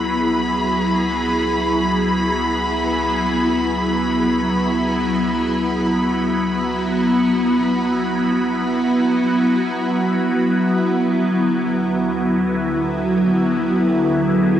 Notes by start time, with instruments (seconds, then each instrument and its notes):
Already playing: synth drone C#2, ambient pad F#3 B3 E4 G#4, violin section B5
5.43 ambient pad F#4
10.93 ambient pad D2
13.80 ambient pad G#4